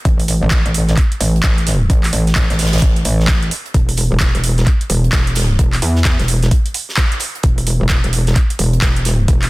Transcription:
0.05 A1, kick, closed hi-hat
0.20 open hi-hat
0.28 closed hi-hat, open hi-hat
0.43 A1
0.50 kick, snare, clap, closed hi-hat
0.66 A1, closed hi-hat
0.74 closed hi-hat, open hi-hat
0.88 snare, closed hi-hat
0.97 kick, clap, closed hi-hat
1.12 closed hi-hat
1.21 A1, closed hi-hat, open hi-hat
1.36 closed hi-hat
1.43 kick, snare, clap, closed hi-hat
1.58 closed hi-hat
1.67 snare, closed hi-hat, open hi-hat
1.90 A1, kick, closed hi-hat
2.04 clap, open hi-hat
2.13 A1, closed hi-hat, open hi-hat
2.27 snare, closed hi-hat
2.35 kick, snare, clap, closed hi-hat
2.50 A1, snare, closed hi-hat
2.59 snare, closed hi-hat, open hi-hat
2.65 snare, closed hi-hat
2.73 snare, closed hi-hat
2.77 snare, closed hi-hat
2.82 kick, closed hi-hat
2.96 closed hi-hat
3.05 A1, closed hi-hat, open hi-hat
3.20 snare
3.28 kick, snare, clap, closed hi-hat
3.43 closed hi-hat
3.51 closed hi-hat, open hi-hat
3.66 closed hi-hat
3.74 E1, kick, closed hi-hat
3.89 open hi-hat
3.97 closed hi-hat, open hi-hat
4.12 E1
4.20 kick, snare, clap, closed hi-hat
4.35 E1, closed hi-hat
4.44 closed hi-hat, open hi-hat
4.58 snare, closed hi-hat
4.66 kick, clap, closed hi-hat
4.81 closed hi-hat
4.90 E1, closed hi-hat, open hi-hat
5.04 closed hi-hat
5.12 kick, snare, clap, closed hi-hat
5.27 closed hi-hat
5.35 snare, closed hi-hat, open hi-hat
5.59 E1, kick, closed hi-hat
5.73 clap, open hi-hat
5.82 E2, closed hi-hat, open hi-hat
5.96 snare
6.05 kick, snare, clap, closed hi-hat
6.19 E1, snare, closed hi-hat
6.28 closed hi-hat, open hi-hat
6.42 snare, closed hi-hat
6.51 kick, closed hi-hat
6.66 closed hi-hat
6.74 closed hi-hat, open hi-hat
6.89 snare
6.97 kick, snare, clap, closed hi-hat
7.12 closed hi-hat
7.20 closed hi-hat, open hi-hat
7.35 closed hi-hat
7.43 E1, kick, closed hi-hat
7.58 open hi-hat
7.67 closed hi-hat, open hi-hat
7.81 E1
7.89 kick, snare, clap, closed hi-hat
8.04 E1, closed hi-hat
8.13 closed hi-hat, open hi-hat
8.27 snare, closed hi-hat
8.35 kick, clap, closed hi-hat
8.50 closed hi-hat
8.59 E1, closed hi-hat, open hi-hat
8.73 closed hi-hat
8.82 kick, snare, clap, closed hi-hat
8.96 closed hi-hat
9.05 snare, closed hi-hat, open hi-hat
9.28 E1, kick, closed hi-hat
9.42 clap, open hi-hat

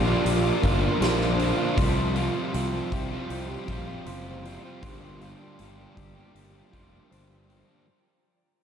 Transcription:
Already playing: A#1 D3 F4 G4 A#4 A5 D6
0.06 A#3 D4 F4
0.25 A#1, open hi-hat
0.43 A#3 D4 F4
0.63 G1 D3 A#3 D4 F4, kick, open hi-hat
0.81 A#3 D4 F4
1.01 A#1 A#2 D3 A#3 D4 F4 C5, snare, open hi-hat
1.18 A#3 D4 F4, snare
1.38 D3 A#3 D4 F4, open hi-hat
1.58 A#3 D4 F4
1.77 C2 C3 F3 G3 C4 F4 C5 G5 C6, kick, open hi-hat
2.15 F3 G3 C4 F4, open hi-hat
2.34 G3 C4 F4
2.53 C2 C3 F3 G3 C4 F4, open hi-hat
2.72 G3 C4 F4
2.91 C2 F3 G3 C4 F4 G4, muted overdriven electric guitar stroke, kick, open hi-hat
3.10 G3 C4 F4
3.30 C2, open hi-hat
3.48 G3 C4 F4
3.68 A#1 F3 G3 C4 F4, kick, open hi-hat
3.88 G3 C4 F4
4.05 F#1 C3 F3 G3 C4 F4 C5, open hi-hat
4.27 G3 C4 F4
4.43 F3 G3 C4 F4, open hi-hat
4.63 G3 C4 F4
4.81 G1 G2 D3 G3 A#3 D4 F4 G4 D5 G5 A#5, kick, open hi-hat
5.21 G3 A#3 D4 F4 G4, open hi-hat
5.38 G3 A#3 D4 G4
5.58 G1 G2 D3 G3 A#3 D4 G4, open hi-hat
5.77 G3 A#3 D4 G4
5.95 G1 G3 A#3 D4 G4, muted overdriven electric guitar stroke, kick, open hi-hat
6.14 G3 A#3 D4 G4
6.35 G1, open hi-hat
6.54 G3 A#3 D4 G4
6.72 F1 G3 A#3 D4 F4 G4, kick, open hi-hat
6.92 G3 A#3 D4 G4
7.10 G1 G2 D3 G3 A#3 D4 G4 C5, open hi-hat
7.30 G3 A#3 D4 G4
7.48 G3 A#3 D4 G4, open hi-hat
7.67 G3 A#3 D4 G4

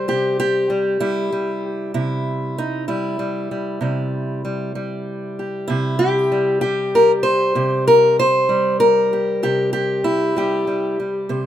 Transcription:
Already playing: G3 C5
0.08 C3 G4
0.40 G4
0.70 G3
1.00 G3 E4
1.32 G3
1.94 C3 E4
2.58 D#4
2.88 G3 E4
3.19 G3
3.51 G3
3.81 C3 G3
4.45 G3
4.75 G3
5.39 G4
5.68 C3 E4
5.99 G4
6.32 G3
6.61 G3 G4
6.95 A#4
7.23 C5
7.55 C3 G4
7.87 A#4
8.19 C5
8.49 G3
8.80 A#4
9.13 G4
9.43 C3 G4
9.73 G4
10.04 E4
10.36 G3 G4
10.67 G3
11.00 G3
11.29 C3 C5

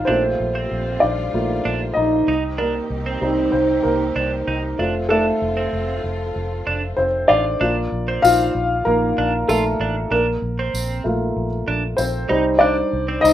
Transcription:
Already playing: D#4 F5
0.05 A#1 A#2 G3 A3 A#3 C4 D4 F4 C5
0.40 A#1
0.55 C4
0.72 A#1
1.00 A#1 D4 D5
1.34 A#1 A3 A#3 F4
1.65 A#1 D4
1.94 A#1 D#4 D#5
2.28 C2 C3 C4 D#4 G4
2.58 A#3 D4 A#4
2.90 C2
3.06 C4
3.21 C2 G3 C4 D#4
3.52 C2 C4 C5
3.83 C2 A#3 A#4
4.16 C2 D4
4.48 C2 D#4
4.78 F1 A3 C4 D4 F4
5.09 A3 D4 A4
5.42 F1
5.57 C4
5.73 F1
6.04 F1
6.36 F1
6.67 F1 D4
6.97 F1 C4 C5
7.28 A1 D4 F4 D5
7.60 A#1 A#3 D4 F4
7.92 A#1
8.08 C4
8.22 A#1 F4 F5, tambourine
8.55 A#1
8.85 A#1 A#3 A#4
9.18 A#1 D4
9.48 A#1 A3 F4 A4, tambourine
9.80 A1 D4
10.11 A#1 A#3 D4 A#4
10.42 A#1
10.59 C4
10.74 A#1, tambourine
11.04 A#1 A3 A#3 F4
11.36 A#1
11.68 A#1 D4
11.97 A#1 C4 C5, tambourine
12.29 C2 G3 C4 D#4
12.59 D4 D5
12.93 C2
13.08 C4
13.21 C2 D#4 D#5, tambourine

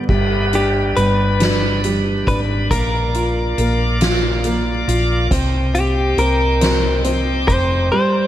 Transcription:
Already playing: G2 D3 B3
0.09 G1 G3 G4 B4 D5 B5, kick, crash
0.53 D4 G4, closed hi-hat
0.96 G1 G3 B4, closed hi-hat
1.40 D4, snare, closed hi-hat
1.84 G3, closed hi-hat
2.27 G#1 D4 B4, kick, closed hi-hat
2.71 A#1 A#3 A#4 F5 D6, kick, closed hi-hat
3.14 F4, closed hi-hat
3.58 A#1 A#3, closed hi-hat
4.01 F4, snare, closed hi-hat
4.44 A#3, closed hi-hat
4.88 A#1 F4, closed hi-hat
5.31 C2 C4 C5 D#5 G5, kick, closed hi-hat
5.74 C4 G4, closed hi-hat
6.17 C2 C4 A#4, closed hi-hat
6.61 C4, snare, closed hi-hat
7.04 C4, closed hi-hat
7.48 F1 C4 C5, kick, closed hi-hat
7.92 G3 C5 D5

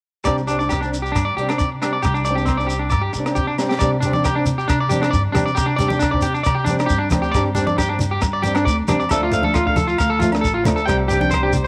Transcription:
0.24 C2 G3 C4 D4 D5, kick, cross-stick, low agogo, shekere
0.38 shekere
0.47 G3 C4 D4, closed hi-hat, shekere
0.59 D4 D5, shekere
0.63 C4
0.69 G4, kick, cross-stick, low agogo, shekere
0.81 D4, shekere
0.85 C4
0.94 closed hi-hat, shekere
1.02 G4, shekere
1.12 G2 D4, kick, cross-stick, low agogo, shekere
1.25 D5
1.37 C3 G3 C4 G4, closed hi-hat
1.41 D4
1.49 C4 D4, cross-stick, low agogo, shekere
1.58 D5, kick, shekere
1.82 G3 C4 D4, cross-stick, closed hi-hat, low agogo, shekere
1.93 D5
2.02 C2 G4, kick, cross-stick, low agogo, shekere
2.14 D4, shekere
2.25 C4 D5, muted nylon-string guitar stroke, closed hi-hat, shekere
2.30 D4
2.35 D4 G4, shekere
2.41 C4
2.45 C4, kick, cross-stick, low agogo, shekere
2.57 D4 D5, shekere
2.63 C4 G4
2.70 closed hi-hat, shekere
2.79 D4
2.90 G2 D5, kick, cross-stick, low agogo, shekere
3.01 G4
3.13 C3 G3, muted clean electric guitar stroke, closed hi-hat, shekere
3.18 C4 D4
3.26 D4, cross-stick, low agogo, shekere
3.31 C4
3.35 G4, kick, shekere
3.47 D4
3.58 G3 C4 D4, snare, low agogo, shekere
3.69 G4, snare
3.79 C3 G3 C4 D5, kick, cross-stick, low agogo, shekere
3.84 D4
4.00 G3 D4, closed hi-hat, low conga, shekere
4.05 C4 D4
4.13 D4 D5, high conga, shekere
4.18 C4
4.24 G4, kick, cross-stick, low agogo, shekere
4.35 C4 D4
4.46 closed hi-hat, low conga, shekere
4.58 G4, shekere
4.68 C3 D4, kick, cross-stick, low agogo, shekere
4.80 D5
4.88 G3 C4 D4 G4, closed hi-hat, high conga, shekere
5.00 C4 D4, cross-stick, shekere
5.04 low agogo
5.11 G2 D5, kick, shekere
5.32 C3 G3 C4 D4, cross-stick, closed hi-hat, high conga, low conga, low agogo, shekere
5.37 D4
5.46 D5, shekere
5.55 C3 G4, kick, cross-stick, low agogo, shekere
5.66 D4
5.76 G3 C4 D5, closed hi-hat, low conga, shekere
5.82 D4
5.88 D4 G4, high conga, shekere
5.95 D4, muted nylon-string guitar stroke
6.00 kick, cross-stick, low agogo, shekere
6.11 C4 D4 D5, kick
6.21 G4, closed hi-hat, low conga, shekere
6.34 D4, shekere
6.43 C3 D5, kick, cross-stick, low agogo, shekere
6.55 G4
6.64 G3 D4, high conga, shekere
6.69 C4 D4, closed hi-hat
6.79 C4 D4, cross-stick, low agogo, shekere
6.86 G2 G4, kick, shekere
6.98 D4
7.10 D2 C4 D4, cross-stick, closed hi-hat, high conga, low conga, low agogo, shekere
7.22 G4, shekere
7.32 G2 G3 D5, kick, cross-stick, low agogo, shekere
7.36 C4 D4
7.55 G3 C4 D4, closed hi-hat, low conga, shekere
7.67 D4 D5, high conga, shekere
7.71 C4
7.78 G4, kick, cross-stick, low agogo, shekere
7.89 C4 D4
7.99 closed hi-hat, low conga, shekere
8.11 G4
8.22 G2, muted clean electric guitar stroke, kick, cross-stick, low agogo, shekere
8.33 D5
8.42 G3 C4 G4, closed hi-hat, high conga, shekere
8.47 D4
8.55 D4, cross-stick, low agogo, shekere
8.60 C4
8.65 D2 D5, kick, shekere
8.87 E2 G3 C4 D4, cross-stick, closed hi-hat, high conga, low conga, low agogo, shekere
8.92 D4
9.00 D5, shekere
9.09 D2 F3 A3 D4 A4, kick, cross-stick, low agogo, shekere
9.23 F4
9.31 F3 A3 D4 F5, closed hi-hat, low conga, shekere
9.41 A3 D4 A4, high conga
9.54 F4, kick, cross-stick, low agogo, shekere
9.66 A3 D4 F5, kick
9.76 A4, closed hi-hat, high conga, low conga, shekere
9.87 F4, shekere
9.98 D2 F5, kick, cross-stick, low agogo, shekere
10.10 A4
10.19 F3 A3 F4, closed hi-hat, high conga, shekere
10.24 muted nylon-string guitar stroke
10.32 A3 D4, cross-stick, low agogo, shekere
10.41 A1 A4, kick, shekere
10.54 F4
10.63 D2 F3 A3 D4, high conga, low conga, low agogo, shekere
10.68 cross-stick, closed hi-hat
10.76 A4, shekere
10.86 C2 G3 C4 G4 C5 D5 G5, muted nylon-string guitar stroke, kick, cross-stick, low agogo, shekere
11.08 G3 C4 D4 G4, closed hi-hat, low conga, shekere
11.20 D4 G5, high conga, shekere
11.24 C4
11.31 C5, kick, cross-stick, low agogo, shekere
11.43 D4 G4
11.47 C4
11.53 closed hi-hat, low conga, shekere

